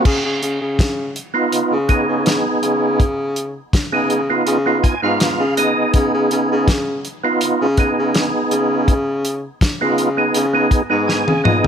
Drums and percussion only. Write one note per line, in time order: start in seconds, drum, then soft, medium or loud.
0.05 kick loud
0.05 crash loud
0.43 closed hi-hat medium
0.79 kick loud
0.79 snare loud
0.79 closed hi-hat medium
1.16 closed hi-hat medium
1.52 closed hi-hat medium
1.89 kick medium
1.89 closed hi-hat medium
2.26 snare loud
2.26 closed hi-hat medium
2.63 closed hi-hat medium
3.00 kick loud
3.00 closed hi-hat medium
3.36 closed hi-hat medium
3.73 kick loud
3.73 snare loud
3.73 closed hi-hat medium
4.10 closed hi-hat medium
4.47 closed hi-hat medium
4.84 kick medium
4.84 closed hi-hat medium
5.20 snare medium
5.20 closed hi-hat medium
5.57 closed hi-hat medium
5.94 kick loud
5.94 closed hi-hat medium
6.31 closed hi-hat medium
6.68 kick loud
6.68 snare loud
6.68 closed hi-hat medium
7.05 closed hi-hat medium
7.41 closed hi-hat medium
7.77 kick medium
7.77 closed hi-hat medium
8.15 snare loud
8.15 closed hi-hat medium
8.51 closed hi-hat medium
8.88 kick loud
8.88 closed hi-hat medium
9.25 closed hi-hat medium
9.61 kick loud
9.61 snare loud
9.61 closed hi-hat medium
9.98 closed hi-hat medium
10.34 closed hi-hat medium
10.71 kick medium
10.71 closed hi-hat medium
11.09 snare medium
11.28 high tom medium
11.45 mid tom medium